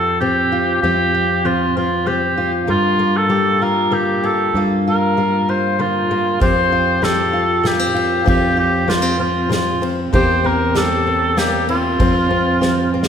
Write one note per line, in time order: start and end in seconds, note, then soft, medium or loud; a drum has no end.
0.00 0.79 F2 medium
0.00 0.14 F3 medium
0.00 0.20 C4 medium
0.00 0.52 F4 soft
0.00 0.86 G4 medium
0.00 0.18 A4 medium
0.20 0.77 C3 medium
0.20 0.79 C4 medium
0.20 0.79 G4 medium
0.52 0.84 F4 medium
0.82 1.39 F2 medium
0.82 2.66 F2 medium
0.82 1.44 C4 medium
0.82 1.14 F4 medium
0.82 1.47 G4 loud
1.15 2.37 F4 medium
1.45 2.01 F3 medium
1.45 1.76 C4 medium
1.45 1.76 F4 medium
1.77 2.06 C4 medium
1.77 2.08 F4 medium
2.06 2.63 C3 medium
2.06 2.65 C4 medium
2.06 2.54 G4 medium
2.38 2.70 F4 medium
2.67 3.24 G2 medium
2.67 4.51 G2 medium
2.67 2.99 A#3 medium
2.67 3.18 F4 loud
2.99 3.90 A#3 medium
3.17 3.64 A4 loud
3.29 3.86 G3 medium
3.29 4.23 G4 medium
3.62 4.57 F4 medium
3.62 3.95 A#4 medium
3.91 4.48 D3 medium
3.91 4.54 A#3 medium
3.91 4.26 G4 medium
4.24 4.60 G4 medium
4.24 4.60 A4 medium
4.54 6.37 G2 medium
4.54 5.11 G2 medium
4.54 5.78 A#3 medium
4.54 4.87 F4 medium
4.87 5.17 F4 medium
4.87 5.51 A#4 medium
5.17 5.73 G3 medium
5.17 5.48 F4 medium
5.49 6.41 F4 medium
5.49 5.82 C5 medium
5.79 6.35 D3 medium
5.79 6.10 A#3 medium
5.79 6.41 F4 medium
6.11 6.41 A#3 medium
6.40 6.97 F2 medium
6.40 8.24 F2 medium
6.40 7.63 C4 medium
6.40 6.72 F4 medium
6.40 7.02 G4 medium
6.40 7.05 C5 loud
6.40 kick medium
6.40 ride medium
6.72 7.33 F4 medium
7.02 7.59 F3 medium
7.02 8.27 G4 medium
7.02 7.69 A4 medium
7.02 snare medium
7.02 ride soft
7.33 7.93 F4 medium
7.63 8.20 C3 medium
7.63 7.79 A#3 medium
7.63 8.28 G4 medium
7.63 snare medium
7.63 ride soft
7.79 8.24 C4 soft
7.94 8.23 F4 medium
7.94 ride soft
8.24 8.82 F2 medium
8.24 10.10 F2 medium
8.24 8.88 C4 medium
8.24 8.56 F4 medium
8.24 kick medium
8.24 ride soft
8.29 8.57 G4 medium
8.57 10.09 F4 medium
8.57 8.91 G4 medium
8.88 9.44 F3 medium
8.88 9.02 A#3 medium
8.88 9.20 F4 medium
8.88 snare medium
8.88 ride soft
9.02 9.18 C4 soft
9.20 9.50 C4 medium
9.20 9.49 F4 medium
9.49 10.06 C3 medium
9.49 9.81 C4 medium
9.49 9.85 F4 medium
9.49 snare medium
9.49 ride soft
9.82 10.13 C4 medium
9.82 ride soft
10.13 11.96 E2 medium
10.13 10.69 E3 medium
10.13 11.36 A#3 medium
10.13 10.44 C4 medium
10.13 10.74 G4 medium
10.13 10.47 C5 loud
10.13 kick medium
10.13 ride soft
10.44 11.06 C4 medium
10.44 10.79 A#4 medium
10.75 11.31 G3 medium
10.75 11.96 G4 medium
10.75 11.40 A4 medium
10.75 snare medium
10.75 ride medium
11.07 11.68 C4 medium
11.37 11.93 E3 medium
11.37 11.99 A#3 medium
11.37 11.69 G4 medium
11.37 snare medium
11.37 ride medium
11.69 11.99 C4 medium
11.69 13.08 F4 medium
11.69 ride soft
11.99 12.55 F2 medium
11.99 13.08 F2 medium
11.99 12.29 C4 medium
11.99 kick medium
11.99 ride medium
12.31 12.60 C4 medium
12.61 13.08 F3 medium
12.61 12.93 C4 medium
12.61 snare soft
12.94 13.08 C4 medium
13.03 snare medium